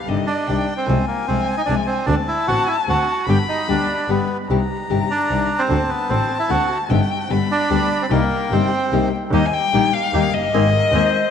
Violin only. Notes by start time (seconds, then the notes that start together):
0.08 D#5
0.47 G5
0.87 G#5
2.06 A5
3.26 B5
4.49 A#5
5.70 A5
6.90 G5
7.31 B5
8.11 G5
9.34 D#5
9.45 G#5
9.53 G5
9.93 F5
10.34 D#5